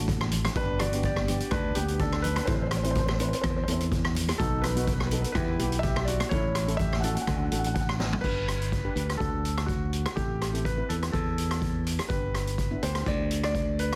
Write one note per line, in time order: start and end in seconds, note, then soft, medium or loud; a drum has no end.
0.00 0.47 A1 medium
0.00 0.27 A3 loud
0.00 0.27 D4 medium
0.00 0.27 F#4 loud
0.08 kick medium
0.08 closed hi-hat medium
0.08 high conga medium
0.21 cross-stick medium
0.21 high conga medium
0.31 closed hi-hat medium
0.31 low conga medium
0.45 cross-stick medium
0.45 closed hi-hat medium
0.45 low conga medium
0.55 1.40 G1 loud
0.55 0.78 B3 medium
0.55 0.78 D4 medium
0.55 0.79 D4 medium
0.55 0.78 G4 medium
0.55 0.81 B4 loud
0.55 kick loud
0.55 closed hi-hat medium
0.80 1.03 F#4 medium
0.80 1.04 D5 loud
0.80 cross-stick medium
0.80 closed hi-hat medium
0.80 low conga medium
0.93 1.15 B3 medium
0.93 1.15 D4 medium
0.93 1.15 G4 medium
0.93 closed hi-hat medium
1.03 1.50 G4 medium
1.03 1.49 D5 loud
1.03 kick loud
1.03 closed hi-hat medium
1.03 low conga medium
1.16 cross-stick medium
1.16 high conga medium
1.28 1.58 B3 medium
1.28 1.58 D4 medium
1.28 1.58 G4 medium
1.28 closed hi-hat medium
1.28 low conga medium
1.40 closed hi-hat medium
1.51 1.73 D2 loud
1.51 1.75 D4 medium
1.51 1.77 B4 loud
1.51 kick loud
1.51 cross-stick medium
1.51 closed hi-hat medium
1.75 2.39 D2 medium
1.75 1.99 B3 medium
1.75 2.20 B3 medium
1.75 2.20 D4 medium
1.75 2.00 G4 medium
1.75 2.20 G4 medium
1.75 closed hi-hat medium
1.75 high conga medium
1.88 closed hi-hat medium
1.99 2.23 D4 medium
1.99 2.25 A4 medium
1.99 kick medium
1.99 closed hi-hat medium
2.13 cross-stick medium
2.22 2.46 D4 medium
2.22 2.48 B4 loud
2.22 closed hi-hat medium
2.22 low conga medium
2.36 cross-stick loud
2.36 closed hi-hat medium
2.36 high conga medium
2.46 3.32 A1 loud
2.46 2.70 C4 medium
2.46 2.55 E4 medium
2.46 2.70 E4 medium
2.46 2.70 A4 medium
2.46 2.53 C5 medium
2.46 kick loud
2.46 closed hi-hat medium
2.55 2.61 C5 medium
2.62 2.66 C5 medium
2.67 2.75 C5 medium
2.67 cross-stick medium
2.67 closed hi-hat medium
2.73 2.82 C5 medium
2.73 low conga medium
2.83 3.07 C4 medium
2.83 3.07 E4 medium
2.83 2.89 C5 medium
2.83 3.07 C5 medium
2.83 closed hi-hat medium
2.91 2.98 C5 medium
2.95 3.05 C5 medium
2.95 kick medium
2.95 closed hi-hat medium
2.95 low conga medium
3.06 3.12 C5 medium
3.06 cross-stick medium
3.06 high conga medium
3.14 3.20 C5 soft
3.19 3.49 C4 medium
3.19 3.49 E4 medium
3.19 3.49 B4 medium
3.19 3.27 C5 medium
3.19 closed hi-hat medium
3.19 low conga medium
3.28 3.33 C5 medium
3.33 3.40 C5 medium
3.33 closed hi-hat medium
3.41 3.65 E2 loud
3.41 3.48 C5 medium
3.41 kick loud
3.41 cross-stick medium
3.41 closed hi-hat medium
3.50 3.55 C5 medium
3.56 3.62 C5 medium
3.64 3.71 C5 medium
3.68 4.31 E2 medium
3.68 4.12 C4 medium
3.68 4.12 E4 medium
3.68 4.12 A4 medium
3.68 closed hi-hat medium
3.68 high conga medium
3.72 3.81 C5 medium
3.80 closed hi-hat medium
3.92 kick medium
3.92 closed hi-hat medium
4.05 cross-stick medium
4.15 closed hi-hat loud
4.15 low conga medium
4.28 cross-stick loud
4.28 closed hi-hat medium
4.28 high conga medium
4.38 5.24 B1 loud
4.38 4.61 B3 medium
4.38 4.61 D#4 medium
4.38 4.62 D#4 medium
4.38 4.61 F#4 medium
4.38 4.64 A4 medium
4.38 kick loud
4.38 closed hi-hat medium
4.62 4.71 D#4 medium
4.62 4.68 B4 medium
4.62 cross-stick medium
4.62 closed hi-hat medium
4.62 low conga medium
4.69 4.76 B4 medium
4.76 4.98 B3 medium
4.76 4.98 D#4 medium
4.76 4.98 F#4 medium
4.76 4.83 B4 medium
4.76 closed hi-hat medium
4.84 4.92 B4 medium
4.84 kick medium
4.84 closed hi-hat medium
4.84 low conga medium
4.93 4.99 B4 medium
5.00 5.05 B4 medium
5.00 cross-stick medium
5.00 high conga medium
5.07 5.12 B4 medium
5.11 5.33 B3 medium
5.11 5.36 D#4 medium
5.11 5.36 A4 medium
5.11 5.21 B4 medium
5.11 closed hi-hat medium
5.11 low conga medium
5.22 5.29 B4 medium
5.22 closed hi-hat medium
5.32 5.56 E2 loud
5.32 5.55 B3 medium
5.32 5.55 E4 medium
5.32 5.81 E4 medium
5.32 5.55 G4 loud
5.32 5.78 B4 medium
5.32 kick loud
5.32 cross-stick medium
5.32 closed hi-hat medium
5.59 6.22 B1 medium
5.59 6.03 B3 medium
5.59 6.03 E4 medium
5.59 6.03 G4 medium
5.59 closed hi-hat medium
5.59 high conga medium
5.72 closed hi-hat medium
5.79 6.06 E5 loud
5.79 closed hi-hat medium
5.83 6.06 G4 medium
5.83 kick medium
5.96 cross-stick medium
6.04 6.30 F#4 medium
6.04 6.28 D5 medium
6.04 closed hi-hat medium
6.20 cross-stick medium
6.20 closed hi-hat medium
6.20 high conga medium
6.29 7.16 A1 loud
6.29 6.53 C#4 medium
6.29 6.54 E4 medium
6.29 6.53 A4 medium
6.29 6.75 C#5 loud
6.29 kick loud
6.29 closed hi-hat medium
6.33 6.77 E4 medium
6.55 cross-stick medium
6.55 closed hi-hat medium
6.68 6.90 C#4 medium
6.68 6.90 E4 medium
6.68 6.90 A4 medium
6.68 closed hi-hat medium
6.77 7.03 G4 medium
6.77 7.01 E5 loud
6.77 kick medium
6.77 closed hi-hat medium
6.77 low conga medium
6.92 cross-stick medium
6.92 high conga medium
7.00 7.28 C#4 medium
7.00 7.28 E4 medium
7.00 7.27 F#4 medium
7.00 7.11 A4 medium
7.00 7.07 F#5 medium
7.00 closed hi-hat medium
7.00 low conga medium
7.08 7.14 F#5 medium
7.15 7.20 F#5 medium
7.15 closed hi-hat medium
7.15 high conga medium
7.22 7.27 F#5 medium
7.27 7.49 D2 loud
7.27 7.47 D4 medium
7.27 7.47 F#4 medium
7.27 7.48 A4 medium
7.27 kick medium
7.27 cross-stick medium
7.27 closed hi-hat medium
7.37 7.42 F#5 medium
7.44 7.50 F#5 medium
7.51 8.15 A1 medium
7.51 7.95 D4 medium
7.51 7.95 F#4 medium
7.51 7.95 A4 medium
7.51 7.58 F#5 medium
7.51 closed hi-hat medium
7.51 high conga medium
7.59 7.65 F#5 medium
7.64 7.73 F#5 medium
7.64 closed hi-hat medium
7.64 high conga medium
7.74 7.80 F#5 medium
7.74 kick medium
7.74 closed hi-hat medium
7.81 7.90 F#5 medium
7.89 cross-stick medium
8.00 snare medium
8.00 low conga medium
8.13 floor tom loud
8.13 high conga medium
8.21 8.87 G1 medium
8.21 8.61 D4 medium
8.21 8.61 G4 soft
8.21 9.22 B4 loud
8.21 8.61 B4 medium
8.21 kick medium
8.21 crash medium
8.48 cross-stick medium
8.48 closed hi-hat medium
8.62 closed hi-hat medium
8.72 kick medium
8.72 closed hi-hat medium
8.85 8.91 D4 medium
8.85 8.92 G4 medium
8.85 8.92 B4 medium
8.96 9.17 D2 medium
8.96 9.19 D4 medium
8.96 9.20 G4 medium
8.96 9.20 B4 medium
8.96 closed hi-hat medium
9.10 cross-stick medium
9.10 closed hi-hat medium
9.17 10.05 D2 medium
9.17 9.98 D4 medium
9.17 9.98 F#4 medium
9.17 9.63 A4 medium
9.17 9.97 A4 medium
9.17 kick medium
9.17 closed hi-hat soft
9.45 closed hi-hat medium
9.58 cross-stick medium
9.58 closed hi-hat medium
9.66 10.12 F#4 medium
9.66 kick medium
9.66 closed hi-hat medium
9.93 closed hi-hat medium
10.06 cross-stick medium
10.06 closed hi-hat medium
10.16 10.80 A1 medium
10.16 10.39 C4 medium
10.16 10.39 E4 medium
10.16 10.66 G4 medium
10.16 10.38 A4 medium
10.16 kick medium
10.16 closed hi-hat medium
10.42 cross-stick medium
10.42 closed hi-hat medium
10.53 10.67 C4 medium
10.53 10.67 E4 medium
10.53 10.68 A4 medium
10.53 closed hi-hat medium
10.65 10.90 B4 medium
10.65 kick medium
10.65 closed hi-hat medium
10.77 11.35 C4 medium
10.77 11.35 E4 medium
10.77 11.35 B4 medium
10.89 11.11 E2 loud
10.89 10.94 A4 medium
10.89 closed hi-hat medium
11.03 cross-stick medium
11.03 closed hi-hat medium
11.12 11.98 E2 medium
11.12 11.81 A4 medium
11.12 kick loud
11.12 closed hi-hat medium
11.38 closed hi-hat medium
11.51 cross-stick medium
11.51 closed hi-hat medium
11.62 kick medium
11.62 closed hi-hat medium
11.86 closed hi-hat medium
11.99 cross-stick medium
11.99 closed hi-hat medium
12.09 12.73 G1 loud
12.09 12.47 B3 medium
12.09 12.47 D4 medium
12.09 12.47 G4 medium
12.09 12.84 B4 medium
12.09 kick loud
12.09 closed hi-hat medium
12.35 cross-stick medium
12.35 closed hi-hat medium
12.47 closed hi-hat medium
12.58 kick medium
12.58 closed hi-hat medium
12.71 12.78 B3 medium
12.71 12.78 D4 medium
12.71 12.78 E4 medium
12.83 13.04 D2 medium
12.83 13.41 B3 medium
12.83 13.41 D4 medium
12.83 13.41 G4 medium
12.83 13.07 C5 medium
12.83 closed hi-hat medium
12.95 cross-stick medium
12.95 closed hi-hat medium
13.06 13.91 D2 medium
13.06 13.43 D5 medium
13.06 kick medium
13.06 closed hi-hat soft
13.31 closed hi-hat medium
13.44 13.77 D5 loud
13.44 cross-stick medium
13.44 closed hi-hat medium
13.55 kick medium
13.55 closed hi-hat medium
13.79 13.96 B4 medium
13.79 closed hi-hat medium
13.93 cross-stick medium
13.93 closed hi-hat medium